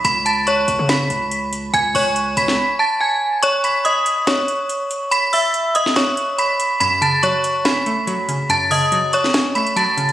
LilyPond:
<<
  \new Staff \with { instrumentName = "Synth bell" } { \time 4/4 \key cis \minor \tempo 4 = 142 <b'' b'''>8 <a'' a'''>8 <cis'' cis'''>4 <b'' b'''>2 | <gis'' gis'''>8 <cis'' cis'''>4 <b'' b'''>4 <a'' a'''>8 <gis'' gis'''>4 | <cis'' cis'''>8 <b'' b'''>8 <dis'' dis'''>4 <cis'' cis'''>2 | <b'' b'''>8 <e'' e'''>4 <dis'' dis'''>8 <cis'' cis'''>4 <b'' b'''>4 |
<b'' b'''>8 <a'' a'''>8 <cis'' cis'''>4 <b'' b'''>2 | <a'' a'''>8 <dis'' dis'''>4 <cis'' cis'''>4 <b'' b'''>8 <a'' a'''>4 | }
  \new Staff \with { instrumentName = "Synth pluck" } { \clef bass \time 4/4 \key cis \minor r1 | r1 | r1 | r1 |
fis,8 cis8 fis4 cis'8 a8 fis8 cis8 | fis,8 cis8 fis4 cis'8 a8 fis8 cis8 | }
  \new Staff \with { instrumentName = "808-style bass" } { \clef bass \time 4/4 \key cis \minor cis,4. cis,16 cis8. cis,4. | cis,8 cis,4 cis,8 r2 | r1 | r1 |
r1 | r1 | }
  \new DrumStaff \with { instrumentName = "Drums" } \drummode { \time 4/4 hh8 hh8 hh8 hh8 <hh sn>8 hh8 hh8 hh8 | hh8 hho8 hh8 hh16 sn16 r4 r4 | hh8 hh8 hh8 hh8 <hh sn>8 hh8 hh8 hh8 | hh8 hho8 hh8 hh16 sn16 <hh sn>8 hh8 hh8 hh8 |
hh8 hh8 hh8 hh8 <hh sn>8 hh8 hh8 hh8 | hh8 hho8 hh8 hh16 sn16 <hh sn>8 hh16 hh16 hh8 hh16 hh16 | }
>>